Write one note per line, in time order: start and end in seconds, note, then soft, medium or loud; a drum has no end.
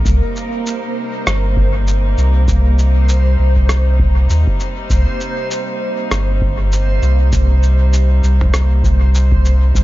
0.00 9.84 C3 medium
0.00 9.84 G3 medium
0.00 9.76 A#3 medium
0.00 9.84 D#4 medium
0.05 0.21 C2 medium
0.05 9.78 C5 medium
0.05 kick loud
0.05 cabasa soft
0.36 cabasa soft
0.66 cabasa soft
1.27 2.15 G1 medium
1.27 cross-stick medium
1.27 cabasa soft
1.57 kick loud
1.87 cabasa soft
2.18 3.36 C2 medium
2.18 cabasa soft
2.48 kick loud
2.48 cabasa soft
2.79 cabasa soft
3.09 cabasa soft
3.39 4.27 C2 medium
3.56 kick medium
3.69 cross-stick medium
3.69 cabasa soft
3.99 kick medium
4.30 4.45 D#2 medium
4.30 cabasa soft
4.47 kick medium
4.60 cabasa soft
4.90 5.06 C2 medium
4.90 kick loud
4.90 cabasa soft
5.20 cabasa soft
5.51 cabasa soft
6.11 7.00 G1 loud
6.11 cross-stick medium
6.11 cabasa soft
6.41 kick loud
6.72 cabasa soft
7.02 8.21 C2 medium
7.02 cabasa soft
7.32 kick loud
7.32 cabasa soft
7.63 cabasa soft
7.93 cabasa soft
8.23 8.83 C2 medium
8.23 cabasa soft
8.41 kick medium
8.41 mid tom medium
8.54 cross-stick medium
8.54 cabasa soft
8.84 9.72 C2 loud
8.84 kick loud
8.84 cabasa soft
9.15 cabasa soft
9.32 kick medium
9.45 cabasa soft
9.75 9.84 C2 medium
9.75 kick loud
9.75 cabasa soft